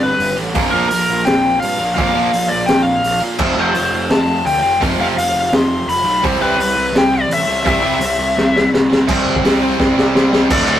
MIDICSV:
0, 0, Header, 1, 6, 480
1, 0, Start_track
1, 0, Tempo, 355450
1, 736, Time_signature, 4, 2, 24, 8
1, 14579, End_track
2, 0, Start_track
2, 0, Title_t, "Lead electric guitar"
2, 0, Program_c, 0, 29
2, 40, Note_on_c, 0, 71, 78
2, 476, Note_off_c, 0, 71, 0
2, 958, Note_on_c, 0, 70, 85
2, 1179, Note_off_c, 0, 70, 0
2, 1195, Note_on_c, 0, 70, 83
2, 1690, Note_on_c, 0, 79, 112
2, 1702, Note_off_c, 0, 70, 0
2, 2156, Note_off_c, 0, 79, 0
2, 2161, Note_on_c, 0, 77, 101
2, 2617, Note_off_c, 0, 77, 0
2, 2634, Note_on_c, 0, 77, 104
2, 3360, Note_on_c, 0, 74, 78
2, 3390, Note_off_c, 0, 77, 0
2, 3593, Note_off_c, 0, 74, 0
2, 3594, Note_on_c, 0, 79, 110
2, 3814, Note_off_c, 0, 79, 0
2, 3814, Note_on_c, 0, 77, 86
2, 4318, Note_off_c, 0, 77, 0
2, 4865, Note_on_c, 0, 72, 78
2, 5072, Note_off_c, 0, 72, 0
2, 5088, Note_on_c, 0, 72, 85
2, 5523, Note_off_c, 0, 72, 0
2, 5553, Note_on_c, 0, 81, 106
2, 6019, Note_off_c, 0, 81, 0
2, 6024, Note_on_c, 0, 79, 94
2, 6470, Note_off_c, 0, 79, 0
2, 6756, Note_on_c, 0, 77, 93
2, 6823, Note_off_c, 0, 77, 0
2, 6988, Note_on_c, 0, 77, 94
2, 7480, Note_off_c, 0, 77, 0
2, 7499, Note_on_c, 0, 84, 108
2, 7929, Note_off_c, 0, 84, 0
2, 7955, Note_on_c, 0, 83, 98
2, 8395, Note_off_c, 0, 83, 0
2, 8668, Note_on_c, 0, 71, 94
2, 8913, Note_off_c, 0, 71, 0
2, 8929, Note_on_c, 0, 71, 96
2, 9410, Note_off_c, 0, 71, 0
2, 9424, Note_on_c, 0, 79, 111
2, 9649, Note_off_c, 0, 79, 0
2, 9650, Note_on_c, 0, 74, 88
2, 9883, Note_off_c, 0, 74, 0
2, 9902, Note_on_c, 0, 76, 92
2, 10336, Note_off_c, 0, 76, 0
2, 10352, Note_on_c, 0, 76, 83
2, 11731, Note_off_c, 0, 76, 0
2, 14197, Note_on_c, 0, 74, 89
2, 14411, Note_off_c, 0, 74, 0
2, 14428, Note_on_c, 0, 74, 83
2, 14579, Note_off_c, 0, 74, 0
2, 14579, End_track
3, 0, Start_track
3, 0, Title_t, "Overdriven electric guitar"
3, 0, Program_c, 1, 29
3, 0, Note_on_c, 1, 43, 79
3, 0, Note_on_c, 1, 50, 79
3, 0, Note_on_c, 1, 55, 84
3, 0, Note_on_c, 1, 59, 96
3, 0, Note_on_c, 1, 62, 90
3, 0, Note_on_c, 1, 67, 101
3, 477, Note_off_c, 1, 43, 0
3, 477, Note_off_c, 1, 67, 0
3, 479, Note_off_c, 1, 50, 0
3, 486, Note_off_c, 1, 55, 0
3, 492, Note_off_c, 1, 59, 0
3, 493, Note_on_c, 1, 67, 91
3, 502, Note_off_c, 1, 62, 0
3, 507, Note_on_c, 1, 62, 85
3, 515, Note_on_c, 1, 59, 88
3, 517, Note_on_c, 1, 55, 82
3, 528, Note_on_c, 1, 50, 71
3, 537, Note_on_c, 1, 43, 75
3, 720, Note_off_c, 1, 67, 0
3, 721, Note_off_c, 1, 43, 0
3, 727, Note_on_c, 1, 46, 94
3, 731, Note_off_c, 1, 59, 0
3, 732, Note_off_c, 1, 50, 0
3, 733, Note_off_c, 1, 55, 0
3, 737, Note_on_c, 1, 53, 95
3, 743, Note_on_c, 1, 58, 82
3, 750, Note_off_c, 1, 62, 0
3, 750, Note_on_c, 1, 62, 84
3, 763, Note_on_c, 1, 65, 83
3, 769, Note_on_c, 1, 70, 94
3, 2392, Note_off_c, 1, 70, 0
3, 2400, Note_off_c, 1, 46, 0
3, 2408, Note_off_c, 1, 58, 0
3, 2408, Note_off_c, 1, 62, 0
3, 2409, Note_on_c, 1, 70, 87
3, 2413, Note_off_c, 1, 65, 0
3, 2419, Note_on_c, 1, 65, 80
3, 2424, Note_on_c, 1, 62, 78
3, 2434, Note_on_c, 1, 58, 77
3, 2443, Note_off_c, 1, 53, 0
3, 2449, Note_on_c, 1, 53, 70
3, 2451, Note_on_c, 1, 46, 71
3, 2636, Note_off_c, 1, 46, 0
3, 2640, Note_off_c, 1, 70, 0
3, 2648, Note_off_c, 1, 62, 0
3, 2653, Note_off_c, 1, 58, 0
3, 2653, Note_on_c, 1, 46, 90
3, 2660, Note_off_c, 1, 53, 0
3, 2666, Note_on_c, 1, 53, 86
3, 2674, Note_on_c, 1, 58, 90
3, 2682, Note_on_c, 1, 62, 95
3, 2687, Note_off_c, 1, 65, 0
3, 2693, Note_on_c, 1, 65, 81
3, 2698, Note_on_c, 1, 70, 87
3, 4300, Note_off_c, 1, 70, 0
3, 4316, Note_on_c, 1, 70, 86
3, 4320, Note_off_c, 1, 62, 0
3, 4322, Note_off_c, 1, 65, 0
3, 4324, Note_off_c, 1, 46, 0
3, 4327, Note_on_c, 1, 65, 88
3, 4330, Note_off_c, 1, 58, 0
3, 4337, Note_on_c, 1, 62, 80
3, 4346, Note_on_c, 1, 58, 72
3, 4351, Note_off_c, 1, 53, 0
3, 4356, Note_on_c, 1, 53, 71
3, 4360, Note_on_c, 1, 46, 72
3, 4555, Note_off_c, 1, 70, 0
3, 4559, Note_off_c, 1, 46, 0
3, 4563, Note_off_c, 1, 53, 0
3, 4564, Note_on_c, 1, 41, 93
3, 4565, Note_off_c, 1, 62, 0
3, 4568, Note_on_c, 1, 48, 84
3, 4570, Note_off_c, 1, 58, 0
3, 4584, Note_on_c, 1, 53, 94
3, 4587, Note_off_c, 1, 65, 0
3, 4587, Note_on_c, 1, 57, 91
3, 4592, Note_on_c, 1, 60, 85
3, 4600, Note_on_c, 1, 65, 97
3, 6225, Note_off_c, 1, 65, 0
3, 6240, Note_off_c, 1, 41, 0
3, 6241, Note_on_c, 1, 65, 95
3, 6242, Note_off_c, 1, 48, 0
3, 6246, Note_off_c, 1, 57, 0
3, 6248, Note_off_c, 1, 60, 0
3, 6250, Note_off_c, 1, 53, 0
3, 6254, Note_on_c, 1, 60, 86
3, 6262, Note_on_c, 1, 57, 80
3, 6269, Note_on_c, 1, 53, 79
3, 6275, Note_on_c, 1, 48, 82
3, 6287, Note_on_c, 1, 41, 73
3, 6461, Note_off_c, 1, 41, 0
3, 6472, Note_off_c, 1, 48, 0
3, 6477, Note_on_c, 1, 41, 85
3, 6478, Note_off_c, 1, 65, 0
3, 6481, Note_off_c, 1, 53, 0
3, 6488, Note_off_c, 1, 57, 0
3, 6488, Note_on_c, 1, 48, 88
3, 6497, Note_on_c, 1, 53, 96
3, 6509, Note_on_c, 1, 57, 90
3, 6511, Note_off_c, 1, 60, 0
3, 6516, Note_on_c, 1, 60, 84
3, 6517, Note_on_c, 1, 65, 102
3, 8145, Note_off_c, 1, 65, 0
3, 8155, Note_off_c, 1, 57, 0
3, 8156, Note_off_c, 1, 41, 0
3, 8161, Note_off_c, 1, 48, 0
3, 8162, Note_on_c, 1, 65, 85
3, 8165, Note_off_c, 1, 60, 0
3, 8166, Note_off_c, 1, 53, 0
3, 8170, Note_on_c, 1, 60, 99
3, 8171, Note_on_c, 1, 57, 82
3, 8190, Note_on_c, 1, 53, 82
3, 8194, Note_on_c, 1, 48, 77
3, 8205, Note_on_c, 1, 41, 80
3, 8379, Note_off_c, 1, 48, 0
3, 8390, Note_off_c, 1, 41, 0
3, 8395, Note_on_c, 1, 48, 87
3, 8398, Note_off_c, 1, 65, 0
3, 8403, Note_off_c, 1, 57, 0
3, 8408, Note_on_c, 1, 55, 87
3, 8412, Note_off_c, 1, 53, 0
3, 8420, Note_off_c, 1, 60, 0
3, 8420, Note_on_c, 1, 60, 100
3, 8431, Note_on_c, 1, 64, 101
3, 8434, Note_on_c, 1, 67, 93
3, 8441, Note_on_c, 1, 72, 90
3, 10086, Note_off_c, 1, 72, 0
3, 10091, Note_on_c, 1, 72, 94
3, 10097, Note_off_c, 1, 67, 0
3, 10102, Note_on_c, 1, 67, 86
3, 10106, Note_off_c, 1, 64, 0
3, 10111, Note_on_c, 1, 64, 81
3, 10114, Note_off_c, 1, 60, 0
3, 10119, Note_off_c, 1, 55, 0
3, 10119, Note_on_c, 1, 60, 81
3, 10124, Note_on_c, 1, 55, 79
3, 10131, Note_off_c, 1, 48, 0
3, 10136, Note_on_c, 1, 48, 73
3, 10322, Note_off_c, 1, 48, 0
3, 10328, Note_on_c, 1, 48, 80
3, 10339, Note_off_c, 1, 55, 0
3, 10344, Note_off_c, 1, 64, 0
3, 10344, Note_on_c, 1, 55, 88
3, 10347, Note_off_c, 1, 60, 0
3, 10350, Note_on_c, 1, 64, 89
3, 10353, Note_on_c, 1, 60, 97
3, 10356, Note_off_c, 1, 67, 0
3, 10361, Note_on_c, 1, 67, 91
3, 10365, Note_off_c, 1, 72, 0
3, 10371, Note_on_c, 1, 72, 98
3, 11998, Note_off_c, 1, 48, 0
3, 12001, Note_off_c, 1, 67, 0
3, 12001, Note_off_c, 1, 72, 0
3, 12006, Note_off_c, 1, 55, 0
3, 12008, Note_off_c, 1, 64, 0
3, 12010, Note_off_c, 1, 60, 0
3, 12017, Note_on_c, 1, 67, 84
3, 12017, Note_on_c, 1, 72, 92
3, 12026, Note_on_c, 1, 64, 84
3, 12038, Note_on_c, 1, 60, 80
3, 12041, Note_on_c, 1, 55, 71
3, 12057, Note_on_c, 1, 48, 73
3, 12239, Note_off_c, 1, 48, 0
3, 12243, Note_off_c, 1, 67, 0
3, 12243, Note_off_c, 1, 72, 0
3, 12247, Note_off_c, 1, 55, 0
3, 12247, Note_off_c, 1, 64, 0
3, 12250, Note_off_c, 1, 60, 0
3, 12255, Note_on_c, 1, 48, 83
3, 12263, Note_on_c, 1, 55, 89
3, 12267, Note_on_c, 1, 60, 96
3, 12718, Note_off_c, 1, 48, 0
3, 12729, Note_off_c, 1, 55, 0
3, 12735, Note_on_c, 1, 48, 84
3, 12742, Note_off_c, 1, 60, 0
3, 12745, Note_on_c, 1, 55, 91
3, 12758, Note_on_c, 1, 60, 97
3, 12948, Note_off_c, 1, 48, 0
3, 12951, Note_off_c, 1, 55, 0
3, 12959, Note_off_c, 1, 60, 0
3, 12964, Note_on_c, 1, 48, 89
3, 12967, Note_on_c, 1, 55, 94
3, 12975, Note_on_c, 1, 60, 93
3, 13182, Note_off_c, 1, 48, 0
3, 13193, Note_off_c, 1, 55, 0
3, 13197, Note_off_c, 1, 60, 0
3, 13198, Note_on_c, 1, 48, 88
3, 13209, Note_on_c, 1, 55, 90
3, 13214, Note_on_c, 1, 60, 98
3, 13668, Note_off_c, 1, 48, 0
3, 13681, Note_off_c, 1, 55, 0
3, 13684, Note_on_c, 1, 48, 73
3, 13690, Note_off_c, 1, 60, 0
3, 13697, Note_on_c, 1, 55, 85
3, 13707, Note_on_c, 1, 60, 102
3, 13917, Note_off_c, 1, 48, 0
3, 13932, Note_off_c, 1, 55, 0
3, 13933, Note_on_c, 1, 48, 75
3, 13936, Note_off_c, 1, 60, 0
3, 13949, Note_on_c, 1, 55, 89
3, 13952, Note_on_c, 1, 60, 105
3, 14149, Note_off_c, 1, 48, 0
3, 14154, Note_on_c, 1, 38, 78
3, 14166, Note_off_c, 1, 55, 0
3, 14168, Note_off_c, 1, 60, 0
3, 14172, Note_on_c, 1, 45, 92
3, 14177, Note_on_c, 1, 50, 95
3, 14190, Note_on_c, 1, 57, 92
3, 14199, Note_on_c, 1, 66, 104
3, 14579, Note_off_c, 1, 38, 0
3, 14579, Note_off_c, 1, 45, 0
3, 14579, Note_off_c, 1, 50, 0
3, 14579, Note_off_c, 1, 57, 0
3, 14579, Note_off_c, 1, 66, 0
3, 14579, End_track
4, 0, Start_track
4, 0, Title_t, "Distorted electric guitar"
4, 0, Program_c, 2, 30
4, 968, Note_on_c, 2, 46, 82
4, 979, Note_on_c, 2, 53, 100
4, 982, Note_on_c, 2, 58, 99
4, 1165, Note_off_c, 2, 46, 0
4, 1170, Note_off_c, 2, 53, 0
4, 1172, Note_off_c, 2, 58, 0
4, 2879, Note_on_c, 2, 46, 82
4, 2883, Note_on_c, 2, 53, 101
4, 2893, Note_on_c, 2, 58, 117
4, 3082, Note_off_c, 2, 46, 0
4, 3084, Note_off_c, 2, 53, 0
4, 3089, Note_off_c, 2, 58, 0
4, 4813, Note_on_c, 2, 41, 87
4, 4821, Note_on_c, 2, 48, 92
4, 4826, Note_on_c, 2, 53, 98
4, 5010, Note_off_c, 2, 41, 0
4, 5014, Note_off_c, 2, 48, 0
4, 5016, Note_off_c, 2, 53, 0
4, 6725, Note_on_c, 2, 41, 97
4, 6727, Note_on_c, 2, 48, 91
4, 6737, Note_on_c, 2, 53, 109
4, 6926, Note_off_c, 2, 41, 0
4, 6927, Note_off_c, 2, 48, 0
4, 6932, Note_off_c, 2, 53, 0
4, 8645, Note_on_c, 2, 48, 92
4, 8653, Note_on_c, 2, 55, 106
4, 8657, Note_on_c, 2, 60, 108
4, 8846, Note_off_c, 2, 48, 0
4, 8850, Note_off_c, 2, 55, 0
4, 8852, Note_off_c, 2, 60, 0
4, 10544, Note_on_c, 2, 48, 89
4, 10551, Note_on_c, 2, 55, 100
4, 10556, Note_on_c, 2, 60, 110
4, 10754, Note_off_c, 2, 48, 0
4, 10758, Note_off_c, 2, 55, 0
4, 10760, Note_off_c, 2, 60, 0
4, 14579, End_track
5, 0, Start_track
5, 0, Title_t, "Picked electric bass"
5, 0, Program_c, 3, 34
5, 0, Note_on_c, 3, 31, 83
5, 194, Note_off_c, 3, 31, 0
5, 268, Note_on_c, 3, 31, 92
5, 466, Note_off_c, 3, 31, 0
5, 512, Note_on_c, 3, 33, 87
5, 709, Note_off_c, 3, 33, 0
5, 748, Note_on_c, 3, 34, 92
5, 946, Note_off_c, 3, 34, 0
5, 998, Note_on_c, 3, 34, 85
5, 1193, Note_off_c, 3, 34, 0
5, 1243, Note_on_c, 3, 34, 91
5, 1435, Note_off_c, 3, 34, 0
5, 1489, Note_on_c, 3, 34, 88
5, 1679, Note_off_c, 3, 34, 0
5, 1718, Note_on_c, 3, 34, 90
5, 2117, Note_off_c, 3, 34, 0
5, 2198, Note_on_c, 3, 43, 96
5, 2394, Note_off_c, 3, 43, 0
5, 2439, Note_on_c, 3, 34, 91
5, 2635, Note_off_c, 3, 34, 0
5, 2669, Note_on_c, 3, 34, 88
5, 2868, Note_off_c, 3, 34, 0
5, 2908, Note_on_c, 3, 34, 81
5, 3108, Note_off_c, 3, 34, 0
5, 3146, Note_on_c, 3, 34, 92
5, 3347, Note_off_c, 3, 34, 0
5, 3401, Note_on_c, 3, 34, 81
5, 3596, Note_off_c, 3, 34, 0
5, 3630, Note_on_c, 3, 34, 81
5, 4034, Note_off_c, 3, 34, 0
5, 4115, Note_on_c, 3, 34, 84
5, 4313, Note_off_c, 3, 34, 0
5, 4344, Note_on_c, 3, 46, 87
5, 4547, Note_off_c, 3, 46, 0
5, 4578, Note_on_c, 3, 29, 89
5, 4783, Note_off_c, 3, 29, 0
5, 4817, Note_on_c, 3, 29, 89
5, 5023, Note_off_c, 3, 29, 0
5, 5070, Note_on_c, 3, 29, 87
5, 5270, Note_off_c, 3, 29, 0
5, 5305, Note_on_c, 3, 29, 82
5, 5507, Note_off_c, 3, 29, 0
5, 5537, Note_on_c, 3, 29, 88
5, 5946, Note_off_c, 3, 29, 0
5, 6017, Note_on_c, 3, 38, 85
5, 6223, Note_off_c, 3, 38, 0
5, 6255, Note_on_c, 3, 29, 94
5, 6462, Note_off_c, 3, 29, 0
5, 6504, Note_on_c, 3, 29, 89
5, 6707, Note_off_c, 3, 29, 0
5, 6728, Note_on_c, 3, 29, 91
5, 6938, Note_off_c, 3, 29, 0
5, 6973, Note_on_c, 3, 29, 90
5, 7181, Note_off_c, 3, 29, 0
5, 7211, Note_on_c, 3, 29, 85
5, 7420, Note_off_c, 3, 29, 0
5, 7452, Note_on_c, 3, 29, 90
5, 7864, Note_off_c, 3, 29, 0
5, 7933, Note_on_c, 3, 29, 84
5, 8140, Note_off_c, 3, 29, 0
5, 8157, Note_on_c, 3, 35, 99
5, 8371, Note_off_c, 3, 35, 0
5, 8423, Note_on_c, 3, 36, 90
5, 8617, Note_off_c, 3, 36, 0
5, 8625, Note_on_c, 3, 36, 84
5, 8844, Note_off_c, 3, 36, 0
5, 8865, Note_on_c, 3, 36, 100
5, 9085, Note_off_c, 3, 36, 0
5, 9131, Note_on_c, 3, 36, 87
5, 9339, Note_off_c, 3, 36, 0
5, 9354, Note_on_c, 3, 36, 79
5, 9772, Note_off_c, 3, 36, 0
5, 9831, Note_on_c, 3, 33, 86
5, 10047, Note_off_c, 3, 33, 0
5, 10085, Note_on_c, 3, 36, 94
5, 10295, Note_off_c, 3, 36, 0
5, 10346, Note_on_c, 3, 36, 93
5, 10547, Note_off_c, 3, 36, 0
5, 10586, Note_on_c, 3, 36, 82
5, 10787, Note_off_c, 3, 36, 0
5, 10809, Note_on_c, 3, 36, 85
5, 11017, Note_off_c, 3, 36, 0
5, 11054, Note_on_c, 3, 36, 88
5, 11260, Note_off_c, 3, 36, 0
5, 11294, Note_on_c, 3, 36, 88
5, 11702, Note_off_c, 3, 36, 0
5, 11794, Note_on_c, 3, 36, 89
5, 11991, Note_off_c, 3, 36, 0
5, 12032, Note_on_c, 3, 36, 82
5, 12229, Note_off_c, 3, 36, 0
5, 12275, Note_on_c, 3, 36, 86
5, 12467, Note_off_c, 3, 36, 0
5, 12506, Note_on_c, 3, 31, 93
5, 12702, Note_off_c, 3, 31, 0
5, 12738, Note_on_c, 3, 36, 89
5, 13136, Note_off_c, 3, 36, 0
5, 13226, Note_on_c, 3, 36, 94
5, 13421, Note_off_c, 3, 36, 0
5, 13454, Note_on_c, 3, 36, 103
5, 13653, Note_off_c, 3, 36, 0
5, 13705, Note_on_c, 3, 36, 92
5, 13900, Note_off_c, 3, 36, 0
5, 13947, Note_on_c, 3, 36, 99
5, 14141, Note_off_c, 3, 36, 0
5, 14182, Note_on_c, 3, 26, 104
5, 14360, Note_off_c, 3, 26, 0
5, 14400, Note_on_c, 3, 26, 91
5, 14579, Note_off_c, 3, 26, 0
5, 14579, End_track
6, 0, Start_track
6, 0, Title_t, "Drums"
6, 266, Note_on_c, 9, 46, 56
6, 401, Note_off_c, 9, 46, 0
6, 738, Note_on_c, 9, 46, 63
6, 745, Note_on_c, 9, 36, 118
6, 873, Note_off_c, 9, 46, 0
6, 880, Note_off_c, 9, 36, 0
6, 1222, Note_on_c, 9, 46, 69
6, 1357, Note_off_c, 9, 46, 0
6, 1706, Note_on_c, 9, 46, 63
6, 1710, Note_on_c, 9, 38, 104
6, 1841, Note_off_c, 9, 46, 0
6, 1845, Note_off_c, 9, 38, 0
6, 2189, Note_on_c, 9, 46, 64
6, 2324, Note_off_c, 9, 46, 0
6, 2670, Note_on_c, 9, 36, 114
6, 2671, Note_on_c, 9, 46, 58
6, 2805, Note_off_c, 9, 36, 0
6, 2806, Note_off_c, 9, 46, 0
6, 3149, Note_on_c, 9, 46, 66
6, 3284, Note_off_c, 9, 46, 0
6, 3622, Note_on_c, 9, 46, 61
6, 3626, Note_on_c, 9, 38, 107
6, 3757, Note_off_c, 9, 46, 0
6, 3761, Note_off_c, 9, 38, 0
6, 4105, Note_on_c, 9, 46, 60
6, 4241, Note_off_c, 9, 46, 0
6, 4572, Note_on_c, 9, 49, 96
6, 4579, Note_on_c, 9, 36, 113
6, 4707, Note_off_c, 9, 49, 0
6, 4714, Note_off_c, 9, 36, 0
6, 5055, Note_on_c, 9, 46, 66
6, 5190, Note_off_c, 9, 46, 0
6, 5537, Note_on_c, 9, 46, 70
6, 5541, Note_on_c, 9, 38, 117
6, 5672, Note_off_c, 9, 46, 0
6, 5676, Note_off_c, 9, 38, 0
6, 6026, Note_on_c, 9, 46, 65
6, 6161, Note_off_c, 9, 46, 0
6, 6509, Note_on_c, 9, 36, 107
6, 6511, Note_on_c, 9, 46, 66
6, 6644, Note_off_c, 9, 36, 0
6, 6646, Note_off_c, 9, 46, 0
6, 6998, Note_on_c, 9, 46, 66
6, 7133, Note_off_c, 9, 46, 0
6, 7462, Note_on_c, 9, 46, 58
6, 7466, Note_on_c, 9, 38, 117
6, 7597, Note_off_c, 9, 46, 0
6, 7601, Note_off_c, 9, 38, 0
6, 7954, Note_on_c, 9, 46, 60
6, 8089, Note_off_c, 9, 46, 0
6, 8423, Note_on_c, 9, 46, 60
6, 8426, Note_on_c, 9, 36, 114
6, 8558, Note_off_c, 9, 46, 0
6, 8561, Note_off_c, 9, 36, 0
6, 8914, Note_on_c, 9, 46, 62
6, 9049, Note_off_c, 9, 46, 0
6, 9388, Note_on_c, 9, 46, 61
6, 9392, Note_on_c, 9, 38, 121
6, 9523, Note_off_c, 9, 46, 0
6, 9527, Note_off_c, 9, 38, 0
6, 9870, Note_on_c, 9, 46, 67
6, 10005, Note_off_c, 9, 46, 0
6, 10340, Note_on_c, 9, 46, 65
6, 10343, Note_on_c, 9, 36, 121
6, 10475, Note_off_c, 9, 46, 0
6, 10478, Note_off_c, 9, 36, 0
6, 10813, Note_on_c, 9, 46, 65
6, 10949, Note_off_c, 9, 46, 0
6, 11310, Note_on_c, 9, 38, 63
6, 11445, Note_off_c, 9, 38, 0
6, 11557, Note_on_c, 9, 38, 63
6, 11692, Note_off_c, 9, 38, 0
6, 11799, Note_on_c, 9, 38, 96
6, 11934, Note_off_c, 9, 38, 0
6, 12043, Note_on_c, 9, 38, 98
6, 12178, Note_off_c, 9, 38, 0
6, 12267, Note_on_c, 9, 36, 113
6, 12267, Note_on_c, 9, 49, 122
6, 12402, Note_off_c, 9, 36, 0
6, 12402, Note_off_c, 9, 49, 0
6, 12630, Note_on_c, 9, 36, 92
6, 12758, Note_on_c, 9, 46, 64
6, 12762, Note_on_c, 9, 38, 111
6, 12765, Note_off_c, 9, 36, 0
6, 12893, Note_off_c, 9, 46, 0
6, 12897, Note_off_c, 9, 38, 0
6, 13229, Note_on_c, 9, 38, 72
6, 13230, Note_on_c, 9, 36, 120
6, 13364, Note_off_c, 9, 38, 0
6, 13365, Note_off_c, 9, 36, 0
6, 13473, Note_on_c, 9, 38, 66
6, 13608, Note_off_c, 9, 38, 0
6, 13713, Note_on_c, 9, 38, 96
6, 13848, Note_off_c, 9, 38, 0
6, 13949, Note_on_c, 9, 38, 96
6, 14084, Note_off_c, 9, 38, 0
6, 14185, Note_on_c, 9, 36, 126
6, 14185, Note_on_c, 9, 49, 125
6, 14185, Note_on_c, 9, 57, 90
6, 14320, Note_off_c, 9, 36, 0
6, 14320, Note_off_c, 9, 49, 0
6, 14320, Note_off_c, 9, 57, 0
6, 14414, Note_on_c, 9, 57, 67
6, 14549, Note_off_c, 9, 57, 0
6, 14579, End_track
0, 0, End_of_file